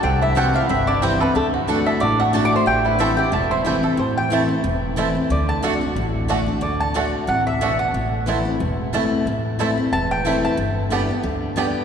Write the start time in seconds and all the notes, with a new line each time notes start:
0.03 C2 C3 C4 G4 G5
0.22 E4 E5
0.35 E3 G3 C4 E4 F#4 A4 C5 F#5 G5
0.53 C4 E4 F4 F5
0.69 G1 G2 C4 E4 E5
0.87 D4 E4 D5
1.02 E3 G3 C4 E4 C5 G5
1.20 B3 C4 E4 A4 B4
1.35 D2 D3 A3 A4
1.54 F#4
1.67 D3 A3 D4 F#4 D5 F#5
1.86 E4 A4 E5
2.00 A1 A2 D4 F#4 D5
2.19 A3 F#4 F#5
2.33 D3 A3 D4 F#4 A4 D5 F#5 A5
2.45 D5 D6
2.52 A3 C5 C6
2.66 A1 A2 A3 G4 G5
2.85 B3 E4 B4
2.99 E3 G3 A3 C4 E4 A4 C5 E5 G5
3.17 C4 E4 G4 G5
3.32 E1 E2 A3 A4 A5
3.51 E4 C5 C6
3.65 E3 G3 A3 C4 E4 C5 G5
3.83 C4 E4 A4
3.97 A1 A2 C5
4.17 G5
4.30 E3 A3 C4 E4 C5 A5
4.48 C4 E4
4.64 E1 E2
4.96 E3 A3 C4 E4 C5 A5
5.15 C4 E4
5.30 D2 D3 D5
5.49 A5
5.62 D3 A3 D4 F#4 D5 F#5
5.81 D4 F#4
5.96 A1 A2
6.28 D3 A3 D4 F#4 D5 F#5
6.46 D4 F#4
6.61 D2 D3 D5
6.80 A5
6.94 D3 A3 D4 F#4 D5 F#5
7.27 A1 C3 F#5
7.47 E5
7.61 B2 A3 D4 F#4 D5 F#5
7.79 F#5
7.94 A1 A2
8.26 E3 A3 C4 E4 C5 A5
8.45 C4 E4
8.60 E1 E2
8.93 E3 A3 C4 E4 C5 A5
9.26 A1 A2
9.59 E3 A3 C4 E4 C5 A5
9.77 C4 E4
9.92 E1 E2 A5
10.11 G5
10.25 E3 A3 C4 E4 C5 A5
10.45 A5
10.57 G1 G2
10.90 D3 G3 B3 D4 G4 D5 G5
11.09 B3 G4
11.23 D2 D3
11.56 D3 G3 B3 D4 G4 D5 G5